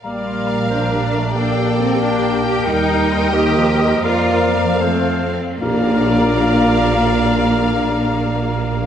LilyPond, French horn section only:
\new Staff \with { instrumentName = "French horn section" } { \clef bass \time 6/8 \key bes \major \tempo 4. = 83 g4. f8 g8 a8 | bes2. | g4. ees8 f8 g8 | bes4. a8. r8. |
<d' f'>2.~ | <d' f'>2. | }